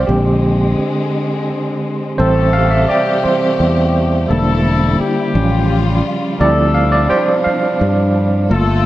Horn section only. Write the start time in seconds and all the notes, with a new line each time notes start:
2.18 A3 A4
2.88 G3 G4
4.28 A3 A4
4.99 G3 G4
6.39 A3 A4
7.09 G3 G4
8.49 A3 A4